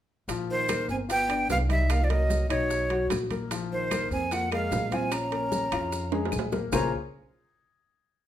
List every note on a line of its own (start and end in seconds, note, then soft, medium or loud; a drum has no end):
0.28 0.85 A#1 medium
0.28 0.62 F3 medium
0.28 0.62 F4 medium
0.28 high bongo medium
0.28 high conga soft
0.28 high timbale medium
0.28 maracas medium
0.49 0.87 D#3 medium
0.49 0.87 C5 medium
0.49 high conga soft
0.68 1.02 A#3 medium
0.68 1.02 A#4 medium
0.68 high bongo medium
0.68 high conga medium
0.68 high timbale medium
0.68 low timbale medium
0.68 claves medium
0.68 maracas medium
0.88 1.45 G1 medium
0.88 0.99 C4 medium
0.88 0.96 G#5 medium
0.88 high bongo soft
0.88 high conga soft
0.88 maracas soft
1.09 1.48 B3 medium
1.09 1.26 F4 medium
1.09 1.26 F5 medium
1.09 1.48 G5 loud
1.09 high bongo medium
1.09 high conga soft
1.09 high timbale medium
1.09 maracas medium
1.29 1.62 D4 medium
1.29 1.62 D5 medium
1.29 high bongo soft
1.29 high conga soft
1.29 high timbale medium
1.29 claves medium
1.49 2.44 C2 medium
1.49 1.59 B3 medium
1.49 1.57 F5 medium
1.49 high bongo soft
1.49 low bongo medium
1.49 high conga medium
1.49 low timbale medium
1.49 maracas medium
1.69 1.92 G3 medium
1.69 2.02 D#4 medium
1.69 2.02 D#5 medium
1.69 1.93 E5 medium
1.69 high bongo soft
1.69 high conga medium
1.69 high timbale medium
1.69 maracas soft
1.90 2.04 A#3 medium
1.90 2.06 F5 medium
1.90 high bongo medium
1.90 high conga soft
1.90 high timbale medium
1.90 claves medium
1.90 maracas medium
2.02 2.11 F3 medium
2.02 2.12 D5 medium
2.10 2.49 F#3 medium
2.10 2.43 A#3 medium
2.10 2.43 A#4 medium
2.10 2.49 D#5 medium
2.10 high conga soft
2.10 high timbale medium
2.30 high bongo medium
2.30 high conga medium
2.30 low timbale medium
2.30 maracas medium
2.49 3.07 B1 medium
2.49 3.07 F#3 medium
2.49 2.83 D#4 medium
2.49 3.07 C#5 medium
2.49 2.83 D#5 medium
2.49 high bongo soft
2.49 high conga soft
2.49 high timbale medium
2.49 claves medium
2.49 maracas soft
2.70 high bongo medium
2.70 high conga soft
2.70 maracas medium
2.90 3.24 F#3 medium
2.90 3.24 F#4 medium
2.90 high bongo soft
2.90 high conga soft
2.90 high timbale medium
3.10 4.05 A#1 medium
3.10 high bongo soft
3.10 low bongo medium
3.10 high conga medium
3.10 high timbale medium
3.10 low timbale medium
3.10 claves medium
3.10 maracas medium
3.31 3.48 A#3 medium
3.31 3.48 A#4 medium
3.31 high bongo soft
3.31 high conga medium
3.31 high timbale medium
3.31 maracas soft
3.51 3.84 F3 medium
3.51 3.84 F4 medium
3.51 high bongo medium
3.51 high conga soft
3.51 high timbale medium
3.51 maracas medium
3.71 4.10 D#3 medium
3.71 4.09 C5 medium
3.71 high conga soft
3.91 4.25 A#3 medium
3.91 4.25 A#4 medium
3.91 high bongo medium
3.91 high conga medium
3.91 high timbale medium
3.91 low timbale medium
3.91 claves medium
3.91 maracas medium
4.11 4.67 F2 medium
4.11 4.33 C4 medium
4.11 4.34 G#5 medium
4.11 high bongo soft
4.11 high conga soft
4.11 maracas soft
4.31 4.50 A#3 medium
4.31 4.48 F4 medium
4.31 4.48 F5 medium
4.31 4.52 F#5 medium
4.31 high bongo medium
4.31 high conga soft
4.31 high timbale medium
4.31 maracas medium
4.51 4.92 G#3 medium
4.51 4.85 A#3 medium
4.51 4.85 A#4 medium
4.51 4.95 F5 medium
4.51 high bongo soft
4.51 high conga soft
4.51 high timbale medium
4.51 claves medium
4.71 5.66 A#1 medium
4.71 high bongo soft
4.71 low bongo medium
4.71 high conga medium
4.71 low timbale medium
4.71 maracas medium
4.91 5.13 C4 medium
4.91 5.25 F4 medium
4.91 5.25 F5 medium
4.91 5.14 G#5 medium
4.91 high bongo soft
4.91 high conga medium
4.91 high timbale medium
4.91 maracas soft
5.12 6.32 C#4 medium
5.12 6.33 A#5 medium
5.12 high bongo medium
5.12 high conga soft
5.12 high timbale medium
5.12 claves medium
5.12 maracas medium
5.32 5.65 A#3 medium
5.32 5.65 A#4 medium
5.32 high conga soft
5.32 high timbale medium
5.52 high bongo medium
5.52 high conga medium
5.52 low timbale medium
5.52 maracas medium
5.72 6.29 F2 medium
5.72 6.05 F4 medium
5.72 6.05 F5 medium
5.72 high bongo soft
5.72 high conga soft
5.72 high timbale medium
5.72 claves medium
5.72 maracas soft
5.92 high bongo medium
5.92 high conga soft
5.92 maracas medium
6.12 6.45 G#3 medium
6.12 6.45 G#4 medium
6.12 high bongo soft
6.12 high conga soft
6.12 high timbale medium
6.25 low timbale medium
6.32 6.68 A#1 medium
6.32 high bongo soft
6.32 low bongo medium
6.32 high conga medium
6.32 claves medium
6.32 maracas medium
6.39 low timbale medium
6.52 6.69 A#3 medium
6.52 6.69 A#4 medium
6.52 high bongo medium
6.52 high conga medium
6.52 low timbale medium
6.52 maracas soft
6.72 6.91 A#1 medium
6.72 6.91 C#3 medium
6.72 6.91 A#3 medium
6.72 6.91 F4 medium
6.72 6.91 G#4 medium
6.72 6.91 A#4 medium
6.72 6.92 C5 medium
6.72 6.92 C#5 medium
6.72 6.91 A#5 medium
6.72 low bongo medium
6.72 low conga medium
6.72 low timbale medium
6.72 claves medium
6.72 maracas medium